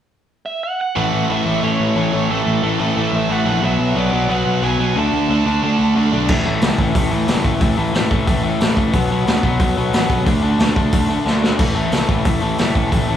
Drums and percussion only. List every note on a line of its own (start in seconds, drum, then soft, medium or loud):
6.29 kick loud
6.29 crash loud
6.61 snare loud
6.61 open hi-hat medium
6.79 kick medium
6.95 kick loud
6.95 open hi-hat medium
7.28 snare loud
7.28 open hi-hat medium
7.44 kick medium
7.61 kick loud
7.61 open hi-hat medium
7.94 snare loud
7.94 open hi-hat medium
8.11 kick loud
8.27 kick loud
8.27 open hi-hat medium
8.60 snare loud
8.60 open hi-hat medium
8.77 kick medium
8.93 kick loud
8.93 open hi-hat medium
9.27 snare loud
9.27 open hi-hat medium
9.43 kick medium
9.60 kick loud
9.60 open hi-hat medium
9.93 snare loud
9.93 open hi-hat medium
10.10 kick medium
10.26 kick loud
10.26 open hi-hat medium
10.59 snare loud
10.59 open hi-hat medium
10.76 kick medium
10.92 kick loud
10.92 open hi-hat medium
11.27 snare medium
11.44 snare medium
11.59 kick loud
11.59 open hi-hat medium
11.59 crash medium
11.92 snare loud
11.92 open hi-hat medium
12.09 kick medium
12.25 kick loud
12.25 open hi-hat medium
12.58 snare loud
12.58 open hi-hat medium
12.75 kick medium
12.92 kick loud
12.92 open hi-hat medium